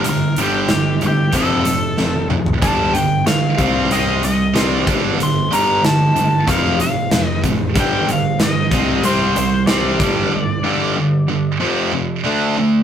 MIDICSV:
0, 0, Header, 1, 5, 480
1, 0, Start_track
1, 0, Tempo, 642398
1, 40, Time_signature, 4, 2, 24, 8
1, 9588, End_track
2, 0, Start_track
2, 0, Title_t, "Lead electric guitar"
2, 0, Program_c, 0, 29
2, 73, Note_on_c, 0, 70, 92
2, 281, Note_off_c, 0, 70, 0
2, 320, Note_on_c, 0, 67, 84
2, 790, Note_off_c, 0, 67, 0
2, 799, Note_on_c, 0, 67, 67
2, 1003, Note_off_c, 0, 67, 0
2, 1019, Note_on_c, 0, 69, 77
2, 1698, Note_off_c, 0, 69, 0
2, 1960, Note_on_c, 0, 81, 89
2, 2192, Note_on_c, 0, 79, 85
2, 2206, Note_off_c, 0, 81, 0
2, 2418, Note_off_c, 0, 79, 0
2, 2446, Note_on_c, 0, 77, 82
2, 2930, Note_on_c, 0, 75, 82
2, 2936, Note_off_c, 0, 77, 0
2, 3165, Note_off_c, 0, 75, 0
2, 3174, Note_on_c, 0, 75, 75
2, 3487, Note_off_c, 0, 75, 0
2, 3487, Note_on_c, 0, 74, 75
2, 3616, Note_off_c, 0, 74, 0
2, 3908, Note_on_c, 0, 84, 90
2, 4135, Note_off_c, 0, 84, 0
2, 4138, Note_on_c, 0, 82, 92
2, 4370, Note_off_c, 0, 82, 0
2, 4373, Note_on_c, 0, 81, 73
2, 4852, Note_on_c, 0, 77, 85
2, 4860, Note_off_c, 0, 81, 0
2, 5069, Note_off_c, 0, 77, 0
2, 5091, Note_on_c, 0, 77, 71
2, 5428, Note_off_c, 0, 77, 0
2, 5428, Note_on_c, 0, 75, 71
2, 5535, Note_off_c, 0, 75, 0
2, 5828, Note_on_c, 0, 79, 100
2, 6060, Note_off_c, 0, 79, 0
2, 6068, Note_on_c, 0, 77, 93
2, 6278, Note_off_c, 0, 77, 0
2, 6297, Note_on_c, 0, 75, 77
2, 6762, Note_off_c, 0, 75, 0
2, 6765, Note_on_c, 0, 72, 91
2, 6998, Note_off_c, 0, 72, 0
2, 7007, Note_on_c, 0, 72, 80
2, 7224, Note_off_c, 0, 72, 0
2, 7227, Note_on_c, 0, 74, 73
2, 9124, Note_off_c, 0, 74, 0
2, 9588, End_track
3, 0, Start_track
3, 0, Title_t, "Overdriven electric guitar"
3, 0, Program_c, 1, 29
3, 50, Note_on_c, 1, 43, 64
3, 53, Note_on_c, 1, 50, 65
3, 261, Note_off_c, 1, 43, 0
3, 263, Note_off_c, 1, 50, 0
3, 287, Note_on_c, 1, 43, 75
3, 293, Note_on_c, 1, 50, 82
3, 301, Note_on_c, 1, 55, 84
3, 509, Note_off_c, 1, 43, 0
3, 512, Note_off_c, 1, 50, 0
3, 516, Note_off_c, 1, 55, 0
3, 535, Note_on_c, 1, 43, 64
3, 539, Note_on_c, 1, 50, 81
3, 743, Note_off_c, 1, 43, 0
3, 745, Note_off_c, 1, 50, 0
3, 773, Note_on_c, 1, 43, 65
3, 777, Note_on_c, 1, 50, 67
3, 982, Note_off_c, 1, 43, 0
3, 984, Note_off_c, 1, 50, 0
3, 1001, Note_on_c, 1, 41, 79
3, 1010, Note_on_c, 1, 48, 87
3, 1013, Note_on_c, 1, 53, 92
3, 1226, Note_off_c, 1, 41, 0
3, 1230, Note_off_c, 1, 48, 0
3, 1232, Note_off_c, 1, 53, 0
3, 1239, Note_on_c, 1, 41, 66
3, 1247, Note_on_c, 1, 48, 71
3, 1455, Note_off_c, 1, 41, 0
3, 1459, Note_off_c, 1, 48, 0
3, 1484, Note_on_c, 1, 48, 89
3, 1485, Note_on_c, 1, 41, 66
3, 1697, Note_off_c, 1, 48, 0
3, 1698, Note_off_c, 1, 41, 0
3, 1721, Note_on_c, 1, 41, 59
3, 1722, Note_on_c, 1, 48, 75
3, 1935, Note_off_c, 1, 41, 0
3, 1936, Note_off_c, 1, 48, 0
3, 1963, Note_on_c, 1, 43, 72
3, 1969, Note_on_c, 1, 50, 82
3, 1973, Note_on_c, 1, 55, 74
3, 2186, Note_off_c, 1, 43, 0
3, 2189, Note_off_c, 1, 50, 0
3, 2191, Note_off_c, 1, 55, 0
3, 2201, Note_on_c, 1, 43, 66
3, 2205, Note_on_c, 1, 50, 68
3, 2416, Note_off_c, 1, 43, 0
3, 2418, Note_off_c, 1, 50, 0
3, 2441, Note_on_c, 1, 43, 67
3, 2445, Note_on_c, 1, 50, 75
3, 2656, Note_off_c, 1, 43, 0
3, 2657, Note_off_c, 1, 50, 0
3, 2678, Note_on_c, 1, 48, 85
3, 2682, Note_on_c, 1, 55, 82
3, 2690, Note_on_c, 1, 60, 85
3, 2904, Note_off_c, 1, 48, 0
3, 2906, Note_off_c, 1, 55, 0
3, 2910, Note_off_c, 1, 60, 0
3, 2920, Note_on_c, 1, 48, 79
3, 2925, Note_on_c, 1, 55, 82
3, 2930, Note_on_c, 1, 60, 83
3, 3144, Note_off_c, 1, 48, 0
3, 3147, Note_off_c, 1, 55, 0
3, 3150, Note_off_c, 1, 60, 0
3, 3162, Note_on_c, 1, 48, 57
3, 3166, Note_on_c, 1, 55, 74
3, 3376, Note_off_c, 1, 48, 0
3, 3378, Note_off_c, 1, 55, 0
3, 3394, Note_on_c, 1, 48, 86
3, 3402, Note_on_c, 1, 55, 82
3, 3410, Note_on_c, 1, 60, 98
3, 3622, Note_off_c, 1, 48, 0
3, 3626, Note_off_c, 1, 55, 0
3, 3630, Note_off_c, 1, 60, 0
3, 3636, Note_on_c, 1, 43, 79
3, 3640, Note_on_c, 1, 50, 99
3, 3649, Note_on_c, 1, 55, 82
3, 3862, Note_off_c, 1, 43, 0
3, 3865, Note_off_c, 1, 50, 0
3, 3869, Note_off_c, 1, 55, 0
3, 3885, Note_on_c, 1, 50, 71
3, 3886, Note_on_c, 1, 43, 63
3, 4098, Note_off_c, 1, 43, 0
3, 4098, Note_off_c, 1, 50, 0
3, 4119, Note_on_c, 1, 43, 83
3, 4125, Note_on_c, 1, 50, 80
3, 4132, Note_on_c, 1, 55, 84
3, 4344, Note_off_c, 1, 43, 0
3, 4347, Note_off_c, 1, 50, 0
3, 4351, Note_off_c, 1, 55, 0
3, 4360, Note_on_c, 1, 43, 71
3, 4364, Note_on_c, 1, 50, 81
3, 4575, Note_off_c, 1, 43, 0
3, 4577, Note_off_c, 1, 50, 0
3, 4605, Note_on_c, 1, 43, 61
3, 4609, Note_on_c, 1, 50, 73
3, 4818, Note_off_c, 1, 43, 0
3, 4819, Note_off_c, 1, 50, 0
3, 4834, Note_on_c, 1, 41, 91
3, 4843, Note_on_c, 1, 48, 81
3, 4845, Note_on_c, 1, 53, 100
3, 5062, Note_off_c, 1, 41, 0
3, 5066, Note_off_c, 1, 48, 0
3, 5067, Note_off_c, 1, 53, 0
3, 5076, Note_on_c, 1, 41, 61
3, 5076, Note_on_c, 1, 48, 78
3, 5293, Note_off_c, 1, 41, 0
3, 5293, Note_off_c, 1, 48, 0
3, 5315, Note_on_c, 1, 41, 77
3, 5321, Note_on_c, 1, 48, 86
3, 5533, Note_off_c, 1, 41, 0
3, 5536, Note_off_c, 1, 48, 0
3, 5560, Note_on_c, 1, 41, 59
3, 5564, Note_on_c, 1, 48, 69
3, 5775, Note_off_c, 1, 41, 0
3, 5777, Note_off_c, 1, 48, 0
3, 5790, Note_on_c, 1, 43, 76
3, 5800, Note_on_c, 1, 50, 84
3, 5803, Note_on_c, 1, 55, 80
3, 6020, Note_off_c, 1, 43, 0
3, 6025, Note_off_c, 1, 50, 0
3, 6027, Note_off_c, 1, 55, 0
3, 6039, Note_on_c, 1, 43, 59
3, 6040, Note_on_c, 1, 50, 74
3, 6255, Note_off_c, 1, 43, 0
3, 6255, Note_off_c, 1, 50, 0
3, 6279, Note_on_c, 1, 43, 72
3, 6284, Note_on_c, 1, 50, 84
3, 6495, Note_off_c, 1, 43, 0
3, 6498, Note_off_c, 1, 50, 0
3, 6518, Note_on_c, 1, 48, 89
3, 6519, Note_on_c, 1, 55, 82
3, 6527, Note_on_c, 1, 60, 96
3, 6744, Note_off_c, 1, 48, 0
3, 6745, Note_off_c, 1, 55, 0
3, 6749, Note_off_c, 1, 60, 0
3, 6757, Note_on_c, 1, 48, 85
3, 6762, Note_on_c, 1, 55, 79
3, 6767, Note_on_c, 1, 60, 77
3, 6984, Note_off_c, 1, 48, 0
3, 6986, Note_off_c, 1, 55, 0
3, 6989, Note_off_c, 1, 60, 0
3, 6998, Note_on_c, 1, 48, 60
3, 7000, Note_on_c, 1, 55, 75
3, 7215, Note_off_c, 1, 48, 0
3, 7216, Note_off_c, 1, 55, 0
3, 7231, Note_on_c, 1, 48, 84
3, 7240, Note_on_c, 1, 55, 88
3, 7244, Note_on_c, 1, 60, 101
3, 7461, Note_off_c, 1, 48, 0
3, 7466, Note_off_c, 1, 55, 0
3, 7467, Note_off_c, 1, 60, 0
3, 7469, Note_on_c, 1, 43, 84
3, 7475, Note_on_c, 1, 50, 90
3, 7482, Note_on_c, 1, 55, 89
3, 7700, Note_off_c, 1, 43, 0
3, 7700, Note_off_c, 1, 50, 0
3, 7707, Note_off_c, 1, 55, 0
3, 7708, Note_on_c, 1, 43, 66
3, 7709, Note_on_c, 1, 50, 66
3, 7930, Note_off_c, 1, 43, 0
3, 7931, Note_off_c, 1, 50, 0
3, 7948, Note_on_c, 1, 43, 80
3, 7951, Note_on_c, 1, 50, 87
3, 7959, Note_on_c, 1, 55, 80
3, 8179, Note_off_c, 1, 43, 0
3, 8181, Note_off_c, 1, 50, 0
3, 8185, Note_off_c, 1, 55, 0
3, 8190, Note_on_c, 1, 43, 67
3, 8190, Note_on_c, 1, 50, 74
3, 8411, Note_off_c, 1, 43, 0
3, 8411, Note_off_c, 1, 50, 0
3, 8428, Note_on_c, 1, 43, 65
3, 8430, Note_on_c, 1, 50, 67
3, 8650, Note_off_c, 1, 43, 0
3, 8651, Note_off_c, 1, 50, 0
3, 8668, Note_on_c, 1, 41, 76
3, 8675, Note_on_c, 1, 48, 79
3, 8679, Note_on_c, 1, 53, 94
3, 8900, Note_off_c, 1, 41, 0
3, 8903, Note_off_c, 1, 48, 0
3, 8905, Note_off_c, 1, 53, 0
3, 8914, Note_on_c, 1, 41, 73
3, 8917, Note_on_c, 1, 48, 70
3, 9133, Note_off_c, 1, 41, 0
3, 9134, Note_off_c, 1, 48, 0
3, 9155, Note_on_c, 1, 50, 87
3, 9161, Note_on_c, 1, 57, 89
3, 9163, Note_on_c, 1, 62, 90
3, 9383, Note_off_c, 1, 50, 0
3, 9386, Note_off_c, 1, 57, 0
3, 9387, Note_off_c, 1, 62, 0
3, 9398, Note_on_c, 1, 50, 66
3, 9405, Note_on_c, 1, 57, 70
3, 9588, Note_off_c, 1, 50, 0
3, 9588, Note_off_c, 1, 57, 0
3, 9588, End_track
4, 0, Start_track
4, 0, Title_t, "Picked electric bass"
4, 0, Program_c, 2, 34
4, 44, Note_on_c, 2, 31, 76
4, 274, Note_off_c, 2, 31, 0
4, 283, Note_on_c, 2, 31, 82
4, 514, Note_off_c, 2, 31, 0
4, 523, Note_on_c, 2, 31, 88
4, 753, Note_off_c, 2, 31, 0
4, 759, Note_on_c, 2, 31, 81
4, 989, Note_off_c, 2, 31, 0
4, 994, Note_on_c, 2, 29, 80
4, 1229, Note_off_c, 2, 29, 0
4, 1243, Note_on_c, 2, 29, 81
4, 1473, Note_off_c, 2, 29, 0
4, 1481, Note_on_c, 2, 29, 79
4, 1710, Note_off_c, 2, 29, 0
4, 1714, Note_on_c, 2, 29, 74
4, 1949, Note_off_c, 2, 29, 0
4, 1961, Note_on_c, 2, 31, 77
4, 2192, Note_off_c, 2, 31, 0
4, 2204, Note_on_c, 2, 31, 77
4, 2434, Note_off_c, 2, 31, 0
4, 2445, Note_on_c, 2, 31, 84
4, 2674, Note_off_c, 2, 31, 0
4, 2679, Note_on_c, 2, 36, 87
4, 2911, Note_off_c, 2, 36, 0
4, 2914, Note_on_c, 2, 36, 85
4, 3148, Note_off_c, 2, 36, 0
4, 3166, Note_on_c, 2, 36, 76
4, 3395, Note_off_c, 2, 36, 0
4, 3402, Note_on_c, 2, 36, 82
4, 3632, Note_off_c, 2, 36, 0
4, 3640, Note_on_c, 2, 31, 81
4, 3871, Note_off_c, 2, 31, 0
4, 3876, Note_on_c, 2, 31, 77
4, 4110, Note_off_c, 2, 31, 0
4, 4119, Note_on_c, 2, 31, 86
4, 4351, Note_off_c, 2, 31, 0
4, 4356, Note_on_c, 2, 31, 85
4, 4589, Note_off_c, 2, 31, 0
4, 4603, Note_on_c, 2, 31, 80
4, 4833, Note_off_c, 2, 31, 0
4, 4841, Note_on_c, 2, 29, 80
4, 5072, Note_off_c, 2, 29, 0
4, 5085, Note_on_c, 2, 29, 82
4, 5314, Note_off_c, 2, 29, 0
4, 5322, Note_on_c, 2, 29, 83
4, 5553, Note_off_c, 2, 29, 0
4, 5556, Note_on_c, 2, 33, 80
4, 5790, Note_off_c, 2, 33, 0
4, 5794, Note_on_c, 2, 31, 71
4, 6029, Note_off_c, 2, 31, 0
4, 6039, Note_on_c, 2, 31, 84
4, 6266, Note_off_c, 2, 31, 0
4, 6270, Note_on_c, 2, 31, 92
4, 6511, Note_on_c, 2, 36, 84
4, 6523, Note_off_c, 2, 31, 0
4, 6744, Note_off_c, 2, 36, 0
4, 6748, Note_on_c, 2, 36, 81
4, 6986, Note_off_c, 2, 36, 0
4, 7000, Note_on_c, 2, 36, 88
4, 7232, Note_off_c, 2, 36, 0
4, 7236, Note_on_c, 2, 36, 75
4, 7465, Note_off_c, 2, 36, 0
4, 7469, Note_on_c, 2, 31, 78
4, 7707, Note_off_c, 2, 31, 0
4, 9588, End_track
5, 0, Start_track
5, 0, Title_t, "Drums"
5, 32, Note_on_c, 9, 42, 88
5, 107, Note_off_c, 9, 42, 0
5, 273, Note_on_c, 9, 42, 57
5, 347, Note_off_c, 9, 42, 0
5, 513, Note_on_c, 9, 38, 103
5, 513, Note_on_c, 9, 42, 77
5, 587, Note_off_c, 9, 42, 0
5, 588, Note_off_c, 9, 38, 0
5, 755, Note_on_c, 9, 42, 54
5, 830, Note_off_c, 9, 42, 0
5, 990, Note_on_c, 9, 42, 83
5, 996, Note_on_c, 9, 36, 71
5, 1065, Note_off_c, 9, 42, 0
5, 1071, Note_off_c, 9, 36, 0
5, 1234, Note_on_c, 9, 42, 62
5, 1309, Note_off_c, 9, 42, 0
5, 1475, Note_on_c, 9, 38, 52
5, 1550, Note_off_c, 9, 38, 0
5, 1600, Note_on_c, 9, 48, 52
5, 1674, Note_off_c, 9, 48, 0
5, 1721, Note_on_c, 9, 45, 74
5, 1795, Note_off_c, 9, 45, 0
5, 1841, Note_on_c, 9, 43, 77
5, 1916, Note_off_c, 9, 43, 0
5, 1960, Note_on_c, 9, 36, 104
5, 1961, Note_on_c, 9, 42, 75
5, 2034, Note_off_c, 9, 36, 0
5, 2036, Note_off_c, 9, 42, 0
5, 2203, Note_on_c, 9, 42, 60
5, 2277, Note_off_c, 9, 42, 0
5, 2441, Note_on_c, 9, 42, 77
5, 2442, Note_on_c, 9, 38, 95
5, 2516, Note_off_c, 9, 42, 0
5, 2517, Note_off_c, 9, 38, 0
5, 2678, Note_on_c, 9, 36, 84
5, 2680, Note_on_c, 9, 42, 52
5, 2753, Note_off_c, 9, 36, 0
5, 2754, Note_off_c, 9, 42, 0
5, 2921, Note_on_c, 9, 42, 69
5, 2995, Note_off_c, 9, 42, 0
5, 3161, Note_on_c, 9, 42, 56
5, 3236, Note_off_c, 9, 42, 0
5, 3404, Note_on_c, 9, 42, 68
5, 3405, Note_on_c, 9, 38, 95
5, 3479, Note_off_c, 9, 42, 0
5, 3480, Note_off_c, 9, 38, 0
5, 3640, Note_on_c, 9, 36, 102
5, 3643, Note_on_c, 9, 42, 54
5, 3714, Note_off_c, 9, 36, 0
5, 3718, Note_off_c, 9, 42, 0
5, 3888, Note_on_c, 9, 42, 77
5, 3962, Note_off_c, 9, 42, 0
5, 4130, Note_on_c, 9, 42, 62
5, 4204, Note_off_c, 9, 42, 0
5, 4367, Note_on_c, 9, 42, 86
5, 4368, Note_on_c, 9, 38, 110
5, 4442, Note_off_c, 9, 42, 0
5, 4443, Note_off_c, 9, 38, 0
5, 4606, Note_on_c, 9, 42, 54
5, 4681, Note_off_c, 9, 42, 0
5, 4839, Note_on_c, 9, 36, 86
5, 4845, Note_on_c, 9, 42, 76
5, 4913, Note_off_c, 9, 36, 0
5, 4920, Note_off_c, 9, 42, 0
5, 5080, Note_on_c, 9, 42, 59
5, 5154, Note_off_c, 9, 42, 0
5, 5316, Note_on_c, 9, 38, 94
5, 5316, Note_on_c, 9, 42, 80
5, 5390, Note_off_c, 9, 42, 0
5, 5391, Note_off_c, 9, 38, 0
5, 5556, Note_on_c, 9, 36, 76
5, 5560, Note_on_c, 9, 42, 57
5, 5631, Note_off_c, 9, 36, 0
5, 5635, Note_off_c, 9, 42, 0
5, 5795, Note_on_c, 9, 36, 108
5, 5798, Note_on_c, 9, 42, 80
5, 5869, Note_off_c, 9, 36, 0
5, 5872, Note_off_c, 9, 42, 0
5, 6042, Note_on_c, 9, 42, 58
5, 6117, Note_off_c, 9, 42, 0
5, 6274, Note_on_c, 9, 38, 102
5, 6274, Note_on_c, 9, 42, 74
5, 6348, Note_off_c, 9, 42, 0
5, 6349, Note_off_c, 9, 38, 0
5, 6512, Note_on_c, 9, 36, 94
5, 6515, Note_on_c, 9, 42, 47
5, 6586, Note_off_c, 9, 36, 0
5, 6589, Note_off_c, 9, 42, 0
5, 6751, Note_on_c, 9, 42, 82
5, 6825, Note_off_c, 9, 42, 0
5, 6994, Note_on_c, 9, 42, 57
5, 7069, Note_off_c, 9, 42, 0
5, 7228, Note_on_c, 9, 42, 66
5, 7229, Note_on_c, 9, 38, 108
5, 7303, Note_off_c, 9, 38, 0
5, 7303, Note_off_c, 9, 42, 0
5, 7471, Note_on_c, 9, 36, 95
5, 7473, Note_on_c, 9, 42, 58
5, 7546, Note_off_c, 9, 36, 0
5, 7548, Note_off_c, 9, 42, 0
5, 9588, End_track
0, 0, End_of_file